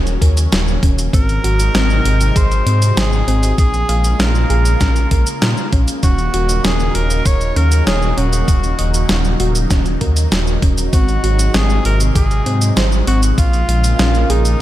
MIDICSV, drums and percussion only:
0, 0, Header, 1, 2, 480
1, 0, Start_track
1, 0, Tempo, 612245
1, 890, Time_signature, 4, 2, 24, 8
1, 11458, End_track
2, 0, Start_track
2, 0, Title_t, "Drums"
2, 53, Note_on_c, 9, 42, 40
2, 53, Note_on_c, 9, 82, 29
2, 131, Note_off_c, 9, 42, 0
2, 131, Note_off_c, 9, 82, 0
2, 169, Note_on_c, 9, 36, 66
2, 171, Note_on_c, 9, 42, 86
2, 247, Note_off_c, 9, 36, 0
2, 250, Note_off_c, 9, 42, 0
2, 292, Note_on_c, 9, 42, 59
2, 292, Note_on_c, 9, 82, 59
2, 370, Note_off_c, 9, 42, 0
2, 370, Note_off_c, 9, 82, 0
2, 412, Note_on_c, 9, 38, 124
2, 412, Note_on_c, 9, 42, 88
2, 412, Note_on_c, 9, 82, 50
2, 490, Note_off_c, 9, 38, 0
2, 490, Note_off_c, 9, 42, 0
2, 490, Note_off_c, 9, 82, 0
2, 533, Note_on_c, 9, 82, 29
2, 611, Note_off_c, 9, 82, 0
2, 649, Note_on_c, 9, 36, 110
2, 652, Note_on_c, 9, 42, 82
2, 727, Note_off_c, 9, 36, 0
2, 730, Note_off_c, 9, 42, 0
2, 773, Note_on_c, 9, 42, 58
2, 773, Note_on_c, 9, 82, 57
2, 851, Note_off_c, 9, 42, 0
2, 851, Note_off_c, 9, 82, 0
2, 889, Note_on_c, 9, 36, 127
2, 893, Note_on_c, 9, 42, 82
2, 893, Note_on_c, 9, 82, 50
2, 967, Note_off_c, 9, 36, 0
2, 971, Note_off_c, 9, 42, 0
2, 971, Note_off_c, 9, 82, 0
2, 1012, Note_on_c, 9, 42, 37
2, 1012, Note_on_c, 9, 82, 29
2, 1091, Note_off_c, 9, 42, 0
2, 1091, Note_off_c, 9, 82, 0
2, 1132, Note_on_c, 9, 42, 80
2, 1210, Note_off_c, 9, 42, 0
2, 1251, Note_on_c, 9, 42, 53
2, 1251, Note_on_c, 9, 82, 56
2, 1330, Note_off_c, 9, 42, 0
2, 1330, Note_off_c, 9, 82, 0
2, 1371, Note_on_c, 9, 38, 126
2, 1371, Note_on_c, 9, 42, 81
2, 1371, Note_on_c, 9, 82, 48
2, 1449, Note_off_c, 9, 38, 0
2, 1449, Note_off_c, 9, 42, 0
2, 1449, Note_off_c, 9, 82, 0
2, 1490, Note_on_c, 9, 82, 30
2, 1568, Note_off_c, 9, 82, 0
2, 1611, Note_on_c, 9, 42, 83
2, 1689, Note_off_c, 9, 42, 0
2, 1731, Note_on_c, 9, 42, 53
2, 1731, Note_on_c, 9, 82, 56
2, 1809, Note_off_c, 9, 42, 0
2, 1809, Note_off_c, 9, 82, 0
2, 1849, Note_on_c, 9, 36, 125
2, 1851, Note_on_c, 9, 42, 83
2, 1851, Note_on_c, 9, 82, 49
2, 1927, Note_off_c, 9, 36, 0
2, 1930, Note_off_c, 9, 42, 0
2, 1930, Note_off_c, 9, 82, 0
2, 1972, Note_on_c, 9, 42, 39
2, 1972, Note_on_c, 9, 82, 29
2, 2050, Note_off_c, 9, 42, 0
2, 2050, Note_off_c, 9, 82, 0
2, 2090, Note_on_c, 9, 42, 83
2, 2169, Note_off_c, 9, 42, 0
2, 2212, Note_on_c, 9, 42, 58
2, 2212, Note_on_c, 9, 82, 59
2, 2290, Note_off_c, 9, 42, 0
2, 2290, Note_off_c, 9, 82, 0
2, 2331, Note_on_c, 9, 38, 127
2, 2331, Note_on_c, 9, 42, 85
2, 2331, Note_on_c, 9, 82, 48
2, 2410, Note_off_c, 9, 38, 0
2, 2410, Note_off_c, 9, 42, 0
2, 2410, Note_off_c, 9, 82, 0
2, 2451, Note_on_c, 9, 82, 28
2, 2530, Note_off_c, 9, 82, 0
2, 2571, Note_on_c, 9, 42, 78
2, 2649, Note_off_c, 9, 42, 0
2, 2690, Note_on_c, 9, 42, 55
2, 2690, Note_on_c, 9, 82, 57
2, 2768, Note_off_c, 9, 42, 0
2, 2768, Note_off_c, 9, 82, 0
2, 2809, Note_on_c, 9, 36, 123
2, 2810, Note_on_c, 9, 42, 77
2, 2810, Note_on_c, 9, 82, 48
2, 2887, Note_off_c, 9, 36, 0
2, 2889, Note_off_c, 9, 42, 0
2, 2889, Note_off_c, 9, 82, 0
2, 2931, Note_on_c, 9, 42, 36
2, 2931, Note_on_c, 9, 82, 29
2, 3009, Note_off_c, 9, 42, 0
2, 3009, Note_off_c, 9, 82, 0
2, 3050, Note_on_c, 9, 42, 79
2, 3129, Note_off_c, 9, 42, 0
2, 3170, Note_on_c, 9, 42, 51
2, 3170, Note_on_c, 9, 82, 58
2, 3249, Note_off_c, 9, 42, 0
2, 3249, Note_off_c, 9, 82, 0
2, 3292, Note_on_c, 9, 38, 121
2, 3292, Note_on_c, 9, 42, 79
2, 3292, Note_on_c, 9, 82, 49
2, 3370, Note_off_c, 9, 38, 0
2, 3370, Note_off_c, 9, 42, 0
2, 3370, Note_off_c, 9, 82, 0
2, 3411, Note_on_c, 9, 82, 29
2, 3489, Note_off_c, 9, 82, 0
2, 3529, Note_on_c, 9, 42, 78
2, 3607, Note_off_c, 9, 42, 0
2, 3649, Note_on_c, 9, 42, 51
2, 3649, Note_on_c, 9, 82, 57
2, 3728, Note_off_c, 9, 42, 0
2, 3728, Note_off_c, 9, 82, 0
2, 3769, Note_on_c, 9, 36, 121
2, 3769, Note_on_c, 9, 38, 66
2, 3769, Note_on_c, 9, 42, 81
2, 3769, Note_on_c, 9, 82, 49
2, 3847, Note_off_c, 9, 36, 0
2, 3847, Note_off_c, 9, 38, 0
2, 3847, Note_off_c, 9, 42, 0
2, 3847, Note_off_c, 9, 82, 0
2, 3889, Note_on_c, 9, 42, 37
2, 3889, Note_on_c, 9, 82, 29
2, 3967, Note_off_c, 9, 42, 0
2, 3967, Note_off_c, 9, 82, 0
2, 4008, Note_on_c, 9, 42, 80
2, 4009, Note_on_c, 9, 36, 65
2, 4086, Note_off_c, 9, 42, 0
2, 4087, Note_off_c, 9, 36, 0
2, 4129, Note_on_c, 9, 42, 52
2, 4129, Note_on_c, 9, 82, 60
2, 4207, Note_off_c, 9, 42, 0
2, 4207, Note_off_c, 9, 82, 0
2, 4249, Note_on_c, 9, 38, 127
2, 4249, Note_on_c, 9, 42, 80
2, 4249, Note_on_c, 9, 82, 50
2, 4328, Note_off_c, 9, 38, 0
2, 4328, Note_off_c, 9, 42, 0
2, 4328, Note_off_c, 9, 82, 0
2, 4370, Note_on_c, 9, 82, 28
2, 4448, Note_off_c, 9, 82, 0
2, 4489, Note_on_c, 9, 36, 109
2, 4489, Note_on_c, 9, 42, 76
2, 4567, Note_off_c, 9, 36, 0
2, 4568, Note_off_c, 9, 42, 0
2, 4609, Note_on_c, 9, 42, 52
2, 4609, Note_on_c, 9, 82, 59
2, 4687, Note_off_c, 9, 42, 0
2, 4687, Note_off_c, 9, 82, 0
2, 4728, Note_on_c, 9, 42, 76
2, 4728, Note_on_c, 9, 82, 52
2, 4729, Note_on_c, 9, 36, 121
2, 4807, Note_off_c, 9, 36, 0
2, 4807, Note_off_c, 9, 42, 0
2, 4807, Note_off_c, 9, 82, 0
2, 4849, Note_on_c, 9, 42, 35
2, 4849, Note_on_c, 9, 82, 30
2, 4927, Note_off_c, 9, 42, 0
2, 4927, Note_off_c, 9, 82, 0
2, 4969, Note_on_c, 9, 42, 77
2, 5047, Note_off_c, 9, 42, 0
2, 5089, Note_on_c, 9, 42, 51
2, 5089, Note_on_c, 9, 82, 60
2, 5167, Note_off_c, 9, 42, 0
2, 5167, Note_off_c, 9, 82, 0
2, 5210, Note_on_c, 9, 38, 115
2, 5210, Note_on_c, 9, 42, 75
2, 5210, Note_on_c, 9, 82, 51
2, 5289, Note_off_c, 9, 38, 0
2, 5289, Note_off_c, 9, 42, 0
2, 5289, Note_off_c, 9, 82, 0
2, 5329, Note_on_c, 9, 82, 30
2, 5408, Note_off_c, 9, 82, 0
2, 5448, Note_on_c, 9, 42, 75
2, 5527, Note_off_c, 9, 42, 0
2, 5570, Note_on_c, 9, 42, 48
2, 5570, Note_on_c, 9, 82, 59
2, 5648, Note_off_c, 9, 42, 0
2, 5648, Note_off_c, 9, 82, 0
2, 5688, Note_on_c, 9, 36, 118
2, 5689, Note_on_c, 9, 42, 78
2, 5689, Note_on_c, 9, 82, 51
2, 5767, Note_off_c, 9, 36, 0
2, 5768, Note_off_c, 9, 42, 0
2, 5768, Note_off_c, 9, 82, 0
2, 5810, Note_on_c, 9, 42, 34
2, 5810, Note_on_c, 9, 82, 31
2, 5889, Note_off_c, 9, 42, 0
2, 5889, Note_off_c, 9, 82, 0
2, 5930, Note_on_c, 9, 42, 78
2, 6009, Note_off_c, 9, 42, 0
2, 6050, Note_on_c, 9, 42, 52
2, 6050, Note_on_c, 9, 82, 62
2, 6128, Note_off_c, 9, 42, 0
2, 6128, Note_off_c, 9, 82, 0
2, 6170, Note_on_c, 9, 38, 121
2, 6170, Note_on_c, 9, 42, 80
2, 6170, Note_on_c, 9, 82, 51
2, 6248, Note_off_c, 9, 38, 0
2, 6248, Note_off_c, 9, 42, 0
2, 6248, Note_off_c, 9, 82, 0
2, 6290, Note_on_c, 9, 82, 30
2, 6369, Note_off_c, 9, 82, 0
2, 6410, Note_on_c, 9, 42, 71
2, 6489, Note_off_c, 9, 42, 0
2, 6529, Note_on_c, 9, 42, 51
2, 6529, Note_on_c, 9, 82, 62
2, 6608, Note_off_c, 9, 42, 0
2, 6608, Note_off_c, 9, 82, 0
2, 6648, Note_on_c, 9, 36, 115
2, 6650, Note_on_c, 9, 42, 77
2, 6650, Note_on_c, 9, 82, 52
2, 6727, Note_off_c, 9, 36, 0
2, 6729, Note_off_c, 9, 42, 0
2, 6729, Note_off_c, 9, 82, 0
2, 6771, Note_on_c, 9, 42, 34
2, 6771, Note_on_c, 9, 82, 30
2, 6850, Note_off_c, 9, 42, 0
2, 6850, Note_off_c, 9, 82, 0
2, 6889, Note_on_c, 9, 42, 78
2, 6967, Note_off_c, 9, 42, 0
2, 7010, Note_on_c, 9, 42, 50
2, 7010, Note_on_c, 9, 82, 61
2, 7088, Note_off_c, 9, 42, 0
2, 7088, Note_off_c, 9, 82, 0
2, 7128, Note_on_c, 9, 38, 116
2, 7128, Note_on_c, 9, 42, 75
2, 7128, Note_on_c, 9, 82, 52
2, 7206, Note_off_c, 9, 38, 0
2, 7206, Note_off_c, 9, 42, 0
2, 7206, Note_off_c, 9, 82, 0
2, 7248, Note_on_c, 9, 82, 31
2, 7326, Note_off_c, 9, 82, 0
2, 7368, Note_on_c, 9, 42, 74
2, 7447, Note_off_c, 9, 42, 0
2, 7489, Note_on_c, 9, 42, 49
2, 7489, Note_on_c, 9, 82, 61
2, 7568, Note_off_c, 9, 42, 0
2, 7568, Note_off_c, 9, 82, 0
2, 7609, Note_on_c, 9, 36, 114
2, 7609, Note_on_c, 9, 38, 62
2, 7609, Note_on_c, 9, 42, 76
2, 7609, Note_on_c, 9, 82, 55
2, 7687, Note_off_c, 9, 36, 0
2, 7688, Note_off_c, 9, 38, 0
2, 7688, Note_off_c, 9, 42, 0
2, 7688, Note_off_c, 9, 82, 0
2, 7728, Note_on_c, 9, 42, 36
2, 7728, Note_on_c, 9, 82, 30
2, 7806, Note_off_c, 9, 42, 0
2, 7806, Note_off_c, 9, 82, 0
2, 7848, Note_on_c, 9, 42, 77
2, 7849, Note_on_c, 9, 36, 60
2, 7927, Note_off_c, 9, 36, 0
2, 7927, Note_off_c, 9, 42, 0
2, 7970, Note_on_c, 9, 42, 52
2, 7970, Note_on_c, 9, 82, 64
2, 8048, Note_off_c, 9, 42, 0
2, 8048, Note_off_c, 9, 82, 0
2, 8090, Note_on_c, 9, 38, 114
2, 8090, Note_on_c, 9, 42, 75
2, 8090, Note_on_c, 9, 82, 55
2, 8169, Note_off_c, 9, 38, 0
2, 8169, Note_off_c, 9, 42, 0
2, 8169, Note_off_c, 9, 82, 0
2, 8210, Note_on_c, 9, 82, 32
2, 8289, Note_off_c, 9, 82, 0
2, 8329, Note_on_c, 9, 36, 106
2, 8331, Note_on_c, 9, 42, 73
2, 8408, Note_off_c, 9, 36, 0
2, 8409, Note_off_c, 9, 42, 0
2, 8450, Note_on_c, 9, 42, 51
2, 8450, Note_on_c, 9, 82, 64
2, 8528, Note_off_c, 9, 42, 0
2, 8528, Note_off_c, 9, 82, 0
2, 8569, Note_on_c, 9, 36, 113
2, 8571, Note_on_c, 9, 42, 77
2, 8571, Note_on_c, 9, 82, 55
2, 8648, Note_off_c, 9, 36, 0
2, 8649, Note_off_c, 9, 42, 0
2, 8649, Note_off_c, 9, 82, 0
2, 8691, Note_on_c, 9, 42, 36
2, 8691, Note_on_c, 9, 82, 31
2, 8770, Note_off_c, 9, 42, 0
2, 8770, Note_off_c, 9, 82, 0
2, 8810, Note_on_c, 9, 42, 78
2, 8889, Note_off_c, 9, 42, 0
2, 8931, Note_on_c, 9, 42, 53
2, 8931, Note_on_c, 9, 82, 64
2, 9010, Note_off_c, 9, 42, 0
2, 9010, Note_off_c, 9, 82, 0
2, 9050, Note_on_c, 9, 38, 115
2, 9050, Note_on_c, 9, 42, 77
2, 9050, Note_on_c, 9, 82, 53
2, 9129, Note_off_c, 9, 38, 0
2, 9129, Note_off_c, 9, 42, 0
2, 9129, Note_off_c, 9, 82, 0
2, 9171, Note_on_c, 9, 82, 31
2, 9249, Note_off_c, 9, 82, 0
2, 9291, Note_on_c, 9, 42, 80
2, 9369, Note_off_c, 9, 42, 0
2, 9411, Note_on_c, 9, 42, 51
2, 9411, Note_on_c, 9, 82, 63
2, 9489, Note_off_c, 9, 42, 0
2, 9489, Note_off_c, 9, 82, 0
2, 9530, Note_on_c, 9, 36, 111
2, 9531, Note_on_c, 9, 42, 83
2, 9531, Note_on_c, 9, 82, 54
2, 9608, Note_off_c, 9, 36, 0
2, 9610, Note_off_c, 9, 42, 0
2, 9610, Note_off_c, 9, 82, 0
2, 9651, Note_on_c, 9, 42, 36
2, 9651, Note_on_c, 9, 82, 31
2, 9730, Note_off_c, 9, 42, 0
2, 9730, Note_off_c, 9, 82, 0
2, 9771, Note_on_c, 9, 42, 78
2, 9849, Note_off_c, 9, 42, 0
2, 9891, Note_on_c, 9, 42, 55
2, 9891, Note_on_c, 9, 82, 66
2, 9969, Note_off_c, 9, 42, 0
2, 9969, Note_off_c, 9, 82, 0
2, 10011, Note_on_c, 9, 38, 116
2, 10011, Note_on_c, 9, 42, 80
2, 10011, Note_on_c, 9, 82, 54
2, 10089, Note_off_c, 9, 38, 0
2, 10089, Note_off_c, 9, 42, 0
2, 10089, Note_off_c, 9, 82, 0
2, 10131, Note_on_c, 9, 82, 31
2, 10210, Note_off_c, 9, 82, 0
2, 10250, Note_on_c, 9, 42, 76
2, 10329, Note_off_c, 9, 42, 0
2, 10370, Note_on_c, 9, 42, 50
2, 10370, Note_on_c, 9, 82, 64
2, 10449, Note_off_c, 9, 42, 0
2, 10449, Note_off_c, 9, 82, 0
2, 10489, Note_on_c, 9, 36, 119
2, 10491, Note_on_c, 9, 42, 82
2, 10491, Note_on_c, 9, 82, 53
2, 10568, Note_off_c, 9, 36, 0
2, 10569, Note_off_c, 9, 42, 0
2, 10569, Note_off_c, 9, 82, 0
2, 10611, Note_on_c, 9, 42, 38
2, 10611, Note_on_c, 9, 82, 31
2, 10689, Note_off_c, 9, 42, 0
2, 10689, Note_off_c, 9, 82, 0
2, 10731, Note_on_c, 9, 42, 81
2, 10810, Note_off_c, 9, 42, 0
2, 10851, Note_on_c, 9, 42, 53
2, 10851, Note_on_c, 9, 82, 63
2, 10929, Note_off_c, 9, 42, 0
2, 10929, Note_off_c, 9, 82, 0
2, 10971, Note_on_c, 9, 38, 114
2, 10971, Note_on_c, 9, 42, 80
2, 10971, Note_on_c, 9, 82, 52
2, 11049, Note_off_c, 9, 38, 0
2, 11049, Note_off_c, 9, 42, 0
2, 11049, Note_off_c, 9, 82, 0
2, 11091, Note_on_c, 9, 42, 38
2, 11091, Note_on_c, 9, 82, 32
2, 11170, Note_off_c, 9, 42, 0
2, 11170, Note_off_c, 9, 82, 0
2, 11210, Note_on_c, 9, 42, 83
2, 11289, Note_off_c, 9, 42, 0
2, 11331, Note_on_c, 9, 42, 53
2, 11331, Note_on_c, 9, 82, 62
2, 11409, Note_off_c, 9, 42, 0
2, 11409, Note_off_c, 9, 82, 0
2, 11458, End_track
0, 0, End_of_file